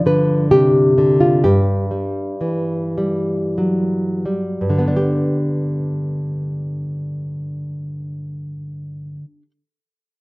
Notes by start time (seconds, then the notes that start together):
Already playing: G2 F3
0.06 D3 B4
0.51 C3 G4
0.98 D3
1.20 F4
1.44 G2 G4
1.91 G3
2.41 E3
2.98 G3
3.58 F#3
4.26 G3
4.61 G2
4.70 D3
4.79 B3
4.88 D4
4.96 G4